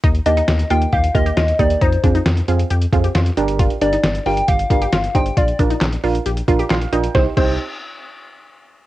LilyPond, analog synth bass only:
\new Staff \with { instrumentName = "Analog synth bass" } { \clef bass \time 4/4 \key c \minor \tempo 4 = 135 ees,8 ees,8 ees,8 ees,8 ees,8 ees,8 ees,8 ees,8 | f,8 f,8 f,8 f,8 f,8 f,8 f,8 g,,8~ | g,,8 g,,8 g,,8 g,,8 g,,8 g,,8 g,,8 g,,8 | bes,,8 bes,,8 bes,,8 bes,,8 bes,,8 bes,,8 bes,,8 bes,,8 |
c,8 c,8 r2. | }